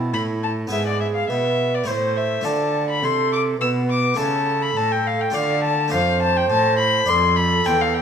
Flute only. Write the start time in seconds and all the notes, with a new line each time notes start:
Already playing: E4
0.71 G#4
1.29 B4
1.88 C5
2.46 D5
3.04 A4
3.60 B4
4.18 A4
5.35 D5
5.93 C5
7.10 A4